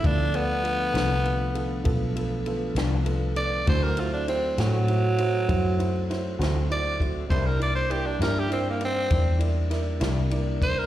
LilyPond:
<<
  \new Staff \with { instrumentName = "Tenor saxophone" } { \time 12/8 \key d \dorian \tempo 4. = 66 d'8 b2. r2 d''8 | c''16 bes'16 f'16 d'16 c'8 fis2. r8 d''8 r8 | c''16 bes'16 d''16 c''16 g'16 d'16 bes'16 g'16 c'16 bes16 c'4 r2 c''16 bes'16 | }
  \new Staff \with { instrumentName = "Upright piano" } { \time 12/8 \key d \dorian <b f' a'>8 <b f' a'>8 <b f' a'>8 <b f' a'>8 <b f' a'>8 <b f' a'>8 <b f' a'>8 <b f' a'>8 <b f' a'>8 <b f' a'>8 <b f' a'>8 <b f' a'>8 | <e' fis' c''>8 <e' fis' c''>8 <e' fis' c''>8 <e' fis' c''>8 <e' fis' c''>8 <e' fis' c''>8 <e' fis' c''>8 <e' fis' c''>8 <e' fis' c''>8 <e' fis' c''>8 <e' fis' c''>8 <e' fis' c''>8 | <e' bes' d''>8 <e' bes' d''>8 <e' bes' d''>8 <e' bes' d''>8 <e' bes' d''>8 <e' bes' d''>8 <e' bes' d''>8 <e' bes' d''>8 <e' bes' d''>8 <e' bes' d''>8 <e' bes' d''>8 <e' bes' d''>8 | }
  \new Staff \with { instrumentName = "Clean electric guitar" } { \time 12/8 \key d \dorian r4. <g, f b d'>8 r2 r8 <g, f b d'>8 r4 | <d a c' fis'>8 r4 <d a c' fis'>8 r2 r8 <d a c' fis'>8 r4 | <c g bes e'>8 r4 <c g bes e'>8 r2 r8 <c g bes e'>8 r4 | }
  \new Staff \with { instrumentName = "Tonewheel organ" } { \time 12/8 \key d \dorian <d f a b>1. | <fis a c' e'>1. | <g bes d' e'>1. | }
  \new Staff \with { instrumentName = "Fingered electric bass" } { \clef bass \time 12/8 \key d \dorian d,4. c,4. b,,4. c,4. | d,4. a,4. fis,4. d,4. | c,4. g,4. e,4. c,4. | }
  \new DrumStaff \with { instrumentName = "Drums" } \drummode { \time 12/8 <bd cymr>8 cymr8 cymr8 <cymr sn>8 cymr8 cymr8 <bd cymr>8 cymr8 cymr8 <cymr sn>8 cymr8 cymr8 | <bd cymr>8 cymr8 cymr8 <cymr sn>8 cymr8 cymr8 <bd cymr>8 cymr8 <cymr sn>8 <cymr sn>8 cymr8 <bd cymr>8 | <bd cymr>8 cymr8 cymr8 <cymr sn>8 cymr8 cymr8 <bd cymr>8 cymr8 <cymr sn>8 <cymr sn>8 cymr8 <bd cymr>8 | }
>>